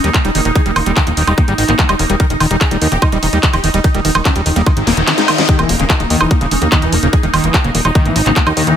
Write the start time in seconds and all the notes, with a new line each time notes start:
Already playing: D#4
0.04 D#2 G3 A#3, closed hi-hat
0.14 D#3 A#3, kick, clap, closed hi-hat, high woodblock
0.25 D#1 G3 D#4, closed hi-hat
0.35 E1 D#3 A#3, open hi-hat
0.45 D#1 D#3 A#3, closed hi-hat
0.55 D#3 G#4, kick, closed hi-hat
0.66 D#1 G3 A#3, closed hi-hat
0.76 D#1 D#3 A#3, open hi-hat, high woodblock
0.86 D#1 G3 A#3, closed hi-hat
0.97 D#3 G4, kick, clap, closed hi-hat
1.07 D#1 D#3 A#3, closed hi-hat
1.17 D#1 D#3 A#3, open hi-hat
1.27 D#1 G3 D#4, closed hi-hat, high woodblock
1.38 D#3 A#3, kick, closed hi-hat
1.48 G#1 G3 A#3, closed hi-hat
1.58 G#1 D#3 D#4, open hi-hat
1.68 G#1 D#3 A#3, clap, closed hi-hat
1.79 D#3 A#3, kick, clap, closed hi-hat
1.89 D#1 G3 D#4, closed hi-hat, high woodblock
1.99 D#1 D#3 A#3, open hi-hat
2.10 D#1 G3 A#3, closed hi-hat
2.20 D#3 A#4, kick, closed hi-hat
2.30 D#1 D#3 D#4, closed hi-hat
2.40 D#1 D#3 D#4, open hi-hat, high woodblock
2.51 D#1 G3 D#4, closed hi-hat
2.61 D#3 G#4, kick, clap, closed hi-hat
2.71 D#1 G3 D#4, closed hi-hat
2.82 D#2 D#3 D#4, open hi-hat
2.92 D#1 D#3 G4, closed hi-hat
3.02 D#3 D#4, kick, closed hi-hat, high woodblock
3.12 D#1 G3 D#4, closed hi-hat
3.23 D#1 D#3 D#4, open hi-hat
3.33 D#2 G3 D#4, closed hi-hat
3.43 D#3 D#4, kick, clap, closed hi-hat
3.53 D#1 D#3 G4, closed hi-hat, high woodblock
3.64 E1 D#3 D#4, open hi-hat
3.74 D#1 G3 D#4, closed hi-hat
3.84 D#3 D#4, kick, closed hi-hat
3.94 D#1 D#3 G3, closed hi-hat
4.05 D#1 D#3, open hi-hat
4.15 D#1 D#3, closed hi-hat, high woodblock
4.25 D#3 C#4, kick, clap, closed hi-hat
4.36 D#1 D#3 G3, closed hi-hat
4.46 D#1 D#3, open hi-hat
4.56 D#1 G3 A#3, closed hi-hat
4.66 D#3, kick, closed hi-hat, reverse cymbal, high woodblock
4.77 G#1 D#3, closed hi-hat
4.87 D#1 A#3, snare, open hi-hat
4.97 D#1 D#3, closed hi-hat
5.08 D#3, snare, clap, closed hi-hat
5.18 G#3 D#4, snare, closed hi-hat
5.28 D#3, open hi-hat, high woodblock
5.38 D#3 G3, snare, closed hi-hat
5.49 D#3 D#4 G4, kick, closed hi-hat, impact
5.59 D#1 E3 A#3, closed hi-hat, high woodblock
5.69 D#1 G3 A#3, open hi-hat
5.79 D#1 C#3 A#3, closed hi-hat
5.90 D#3 D#4, kick, clap, closed hi-hat
6.00 D#1 D#3 A#3, closed hi-hat
6.10 D#2 D#3 A#3, open hi-hat
6.21 D#1 E3 D#4, high woodblock
6.31 G3 A#3, kick, closed hi-hat
6.41 D#1 C#3 A#3, closed hi-hat
6.51 D#1 D#3 C#4, open hi-hat
6.62 D#2 D#3 A#3, closed hi-hat
6.72 D#3 A#3, kick, clap, closed hi-hat, high woodblock
6.82 D#1 E3 D#4, closed hi-hat
6.92 E1 G3 A#3, open hi-hat
7.03 D#1 C#3 A#3, closed hi-hat
7.13 D#3 G#4, kick, closed hi-hat
7.23 D#1 D#3 A#3, closed hi-hat
7.34 D#1 D#3 A#3, open hi-hat, high woodblock
7.44 D#1 E3 A#3, closed hi-hat
7.54 G3 G4, kick, clap, closed hi-hat
7.64 D#1 C#3 A#3, closed hi-hat
7.75 D#1 D#3 A#3, open hi-hat
7.85 D#1 D#3 D#4, closed hi-hat, high woodblock
7.95 D#3 A#3, kick, closed hi-hat
8.05 G#1 E3 A#3, closed hi-hat
8.16 G#1 G3 D#4, open hi-hat
8.26 G#1 C#3 A#3, clap, closed hi-hat
8.36 D#3 A#3, kick, clap, closed hi-hat
8.47 D#2 D#3 D#4, closed hi-hat, high woodblock
8.57 D#2 D#3 A#3, open hi-hat
8.67 D#2 E3 A#3, closed hi-hat